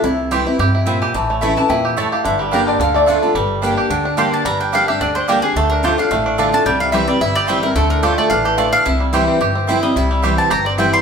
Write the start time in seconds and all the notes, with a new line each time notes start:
Already playing: E5
0.03 C2 C3 E4
0.31 E3 G3 C4 E4 G4 C5 G5
0.46 C4 E4
0.59 F2 G2 G4
0.75 E4
0.86 A#2 C4 E4 C5 G5
1.02 G4 G#5
1.14 A1 A2 E3 A5
1.30 A3 C#5
1.41 E3 A3 C#4 E4 C#5 E5 A5
1.56 E3 C#4 E4 A5
1.69 E2 A#2 E4 G5
1.85 G4
1.97 A2 A3 E4 C#5 A5
2.12 G4 F5
2.25 G1 G2 D3 E5
2.39 G3 G4
2.51 G3 A#3 D4 G4 A#4 D5 G5
2.67 D3 D5
2.79 D2 D3 F5
2.94 A3 D5
3.06 D3 A3 D4 F4 D5 A5
3.23 D3 D4 F4
3.34 G1 G2 G3
3.62 G3 A#3 D4 G4 D5 G5
3.77 G4
3.90 D2 D3 D4
4.05 D4
4.17 G3 A#3 D4 G4 D5 G5 C6
4.33 D4 A5
4.45 G1 G2 G3 A#5
4.60 D4 G5
4.72 G3 A#3 D4 G4 D5 F5 G5
4.88 D4 G4 E5
5.01 D2 D3 D4 D5
5.15 D4 C5
5.28 G3 A#3 D4 G4 A#4 D5 G5
5.42 D4 G4 G#4
5.56 D2 D3 A3 A4
5.70 D4 A#4
5.83 D3 A3 D4 F4 G4 C5 D5 A5
5.98 D4 F4 F5
6.11 A1 A2 A3
6.26 D4
6.38 D3 A3 D4 F4 D5 A5
6.52 D4 F4 A5
6.65 C2 C3 G3 G5
6.80 E4 F5
6.92 E3 G3 C4 E4 G4 C5 E5 G5
7.08 G3 C4 E4 D5
7.20 G1 G2 E4 E5
7.35 G4 D5
7.47 E3 G3 C4 E4 C5 G5
7.63 C4 E4 A#4
7.75 D2 D3 A3 A4
7.90 D4 A#4
8.03 D3 A3 D4 F4 G4 C5 D5 A5
8.18 A3 D5
8.30 A1 E3 D4 F5
8.45 G4 A4
8.57 D3 A3 F4 D5 A5
8.73 D4 F5
8.86 C2 C3 E4 E5
9.00 G3
9.13 E3 G3 C4 E4 G4 C5 G5
9.28 C4
9.40 G1 G2 G4
9.55 C4
9.67 E3 G3 C4 E4 C5 G5
9.83 G3 C4 E4 D#5
9.96 C2 C3 E4 E5
10.11 G3
10.22 E3 G3 C4 E4 G4 C5 G5
10.38 C4 A5
10.50 G1 G2 G4 A#5
10.65 C4 D5
10.78 E3 G3 C4 E4 C5 G5
10.93 G3 C6